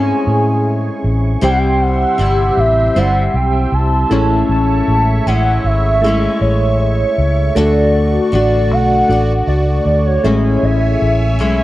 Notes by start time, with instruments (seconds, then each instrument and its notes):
Already playing: fingered electric bass G#2, steel-string acoustic guitar G#3 C#4 E4, synth keys C4 C#4 E4 G#4 C#5, analog synth pad G#4 G#5 C#6, soft synth lead G#5
0.27 fingered electric bass A2
1.04 fingered electric bass A1
1.41 fingered electric bass C2, steel-string acoustic guitar C3 G3 C4 E4, synth keys G3 C4 E4 C5, analog synth pad G4 E5 C6, soft synth lead G5
1.50 soft synth lead F#5
1.58 soft synth lead G5
1.81 soft synth lead F#5
2.18 fingered electric bass G1, steel-string acoustic guitar C3 G3 C4 E4
2.57 fingered electric bass A1, soft synth lead E5
2.95 fingered electric bass G1, synth keys G3 C4 E4 C5, steel-string acoustic guitar G3 C4 E4, soft synth lead F#5
3.34 fingered electric bass B1, soft synth lead G5
3.72 fingered electric bass C2, soft synth lead A5
4.10 fingered electric bass A1, steel-string acoustic guitar A2 G#3 C#4 E4, synth keys G#3 A3 E4 C#5, analog synth pad C#5 E5 C#6
4.49 fingered electric bass A1, soft synth lead A5
4.88 fingered electric bass A1
5.27 fingered electric bass A1, steel-string acoustic guitar G#3 C#4 E4, soft synth lead F#5
5.57 soft synth lead F#5
5.64 fingered electric bass G#1, soft synth lead E5
6.01 steel-string acoustic guitar G#3, synth keys A3 E4 G#4 E5
6.06 steel-string acoustic guitar C#4 E4
6.41 fingered electric bass A1, soft synth lead C#5
6.81 soft synth lead C#5
7.18 fingered electric bass C#2
7.55 fingered electric bass D2, steel-string acoustic guitar D3 A3 F#4, synth keys A3 D4 F#4 A4, analog synth pad F#4 D5, soft synth lead D5
8.32 fingered electric bass A1, steel-string acoustic guitar D3 A3 F#4, soft synth lead D5
8.71 fingered electric bass B1, soft synth lead F#5
9.08 fingered electric bass A1, synth keys A3 D4 F#4 D5, steel-string acoustic guitar A3
9.12 steel-string acoustic guitar F#4
9.47 fingered electric bass C#2, soft synth lead D5
9.86 fingered electric bass D2, soft synth lead D5
10.06 soft synth lead C#5
10.24 fingered electric bass A1, steel-string acoustic guitar A2 G#3 C#4 E4, synth keys A3 E4 G#4 C#5, analog synth pad C#5 E5 G#5
10.63 fingered electric bass A1, soft synth lead E5
11.02 fingered electric bass A1
11.39 fingered electric bass B1, steel-string acoustic guitar A2 G#3 C#4 E4